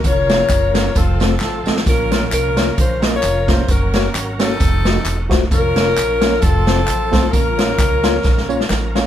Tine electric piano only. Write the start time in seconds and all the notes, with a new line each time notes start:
0.29 A#3 C#4 F4 C#5
0.74 A#3 C#4 F4 C#5
1.20 A3 C4 F4 C5
1.66 A3 C4 F4 D#5
1.87 A#2
2.11 A#3 C#4 F4 C#5
2.57 A#3 C#4 F4 C#5
3.03 A#3 C#4 F4 D#5
3.48 A#3 C#4 F4 C#5
3.95 A#3 C#4 F#4 C#5
4.40 A#3 C#4 F#4 C#5
4.85 A3 F4 F#4 D#5
5.29 A3 F4 F#4 C5
5.76 A#3 C#4 F4 C#5
6.21 A#3 C#4 F4 C#5
6.67 A3 C4 F4 C5
7.12 A3 C4 F4 C5
7.32 A#2
7.58 A#3 C#4 F4 C#5
8.04 A#3 C#4 F4 C#5
8.49 A#3 C#4 F4 C#5
8.95 A#3 C#4 F4 C#5